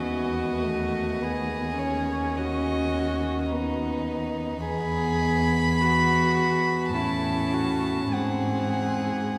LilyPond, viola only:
\new Staff \with { instrumentName = "Viola" } { \time 4/4 \key b \mixolydian \tempo 4 = 52 b8 a8 b8 cis'4. b4 | b2 cis'4 bis4 | }